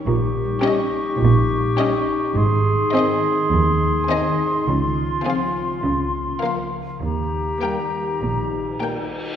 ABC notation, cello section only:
X:1
M:4/4
L:1/8
Q:1/4=103
K:Ebmix
V:1 name="Cello section" clef=bass
^A,,2 z2 A,,2 z2 | A,,2 z2 E,,2 z2 | D,2 z2 D,2 z2 | E,2 z2 B,,2 z2 |]